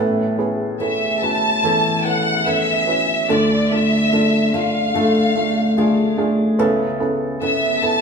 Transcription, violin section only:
0.81 E5
1.23 A5
2.05 F#5
2.46 E5
3.30 D5
3.72 E5
4.54 F5
7.42 E5
7.82 A5

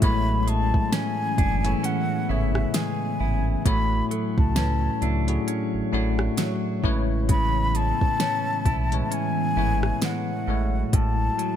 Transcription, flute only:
0.04 B5
0.43 B5
0.49 A5
0.94 G#5
1.85 F#5
2.31 E5
2.76 G#5
3.67 B5
4.38 A5
7.31 B5
7.76 A5
9.13 G#5
10.04 F#5
10.95 A5

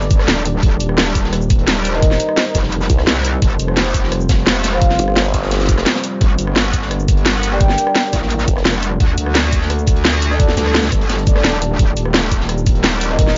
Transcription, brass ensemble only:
1.94 D#4 A#4 D#5
2.46 D#4 A#4 D#5
4.73 F4 C5 F5
7.52 G4 D5 G5
8.04 G4 D5 G5
10.31 D4 A4 D5
11.27 D4 A4 D5
13.10 D#4 A#4 D#5

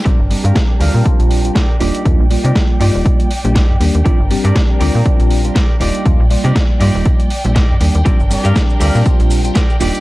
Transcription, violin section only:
0.05 D4 A#4 G5
1.81 D5
4.06 D4 A#4
5.81 D5 G5
8.06 D4 A#4
9.81 D6

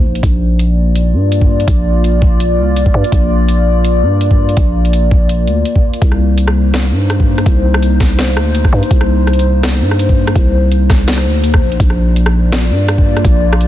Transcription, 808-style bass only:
0.05 A#1
0.23 A#1
1.14 G2
1.68 A#1
2.58 C2
2.94 G2
3.12 A#1
4.03 G2
4.57 A#1
5.47 D2
6.02 C2
6.92 G2
7.46 C2
8.37 D2
8.73 G2
8.91 C2
9.81 G2
10.36 C2
11.26 D2
11.44 D#2
11.62 A#1
11.80 A#1
12.70 G2
13.25 A#1

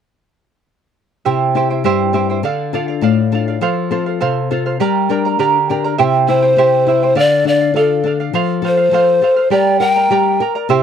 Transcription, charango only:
1.25 E4 G4 C5 E5 G5
1.56 E4 C5 E5 G5
1.70 E4 C5 G5
1.85 E4 G4 C5 E5 G5
2.14 E4 C5 E5 G5
2.30 E4 C5 G5
2.44 A4 D5 F5
2.74 A4 D5 F5
2.88 D5 F5
3.02 A4 D5 F5
3.33 A4 D5 F5
3.48 D5 F5
3.61 A4 C5 F5
3.91 A4 C5 F5
4.06 C5 F5
4.21 A4 C5 F5
4.51 A4 C5 F5
4.66 C5 F5
4.80 G4 A#4 D5 G5 A#5
5.10 A#4 D5 G5 A#5
5.25 A#4 D5 A#5
5.39 G4 A#4 D5 G5 A#5
5.69 A#4 D5 G5 A#5
5.84 A#4 D5 A#5
5.98 E4 G4 C5 E5 G5
6.28 E4 C5 E5 G5
6.42 E4 C5 G5
6.58 E4 G4 C5 E5 G5
6.88 E4 C5 E5 G5
7.03 E4 C5 G5
7.16 A4 D5 F5
7.46 A4 D5 F5
7.61 D5 F5
7.76 A4 D5 F5
8.06 A4 D5 F5
8.20 D5 F5
8.34 A4 C5 F5
8.64 A4 C5 F5
8.77 C5 F5
8.93 A4 C5 F5
9.22 A4 C5 F5
9.36 C5 F5
9.51 G4 A#4 D5 G5 A#5
9.81 A#4 D5 G5 A#5
9.96 A#4 D5 A#5
10.11 G4 A#4 D5 G5 A#5
10.41 A#4 D5 G5 A#5
10.55 A#4 D5 A#5
10.70 E4 G4 C5 E5 G5

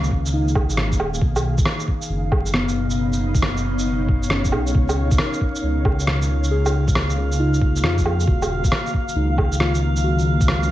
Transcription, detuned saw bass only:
Already playing: C#2
0.70 G#1
0.99 D#1
1.22 B1
2.10 F#1
4.31 F#1
4.53 B1
4.75 C#2
5.63 C#2
7.83 F2
8.05 F2
8.28 D#1
9.15 C#2

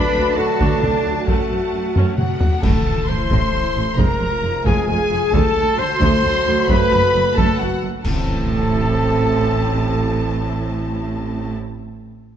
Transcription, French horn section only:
Already playing: B4
0.36 A4
1.26 F#4
2.17 F#4
2.62 A4
3.08 C5
3.98 A#4
4.65 G#4
4.90 G#4
5.34 A4
5.78 C5
6.68 B4
7.35 A4
7.58 F#4
8.04 A4

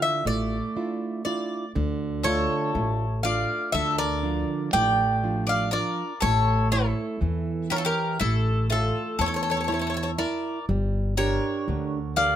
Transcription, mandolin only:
2.23 A4
3.25 D5
3.74 A4
3.98 A#4
4.73 D5
5.47 D5
5.71 A#4
6.20 A4
6.72 E4
7.70 G4
7.76 F4
7.85 G4
8.20 E4
8.70 F4
9.19 A4
9.26 A4
9.34 A4
9.43 A4
9.50 A4
9.57 A4
9.64 A4
9.72 A4
9.79 A4
9.87 A4
9.94 A4
10.03 A4
10.18 A#4
11.17 A#4
12.16 D5

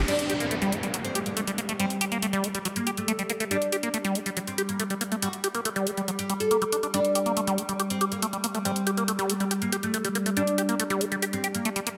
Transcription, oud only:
0.08 D4
1.05 C4
1.26 A#3
1.80 C4
2.76 A#3
2.97 A3
3.51 D4
4.47 C4
4.69 A#3
5.22 F#4
6.19 G4
6.40 A4
6.94 D4
7.90 C4
8.12 A#3
8.65 C4
9.62 A#3
9.83 A3
10.37 D4
11.33 C4
11.55 A#3

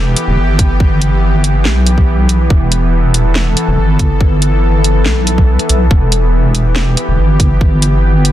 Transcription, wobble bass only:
Already playing: E1
0.28 E1
0.38 G1
1.65 B1
2.50 E1
3.68 E1
3.78 G1
5.06 B1
5.70 B1
5.91 E1
7.08 E1
7.18 G1

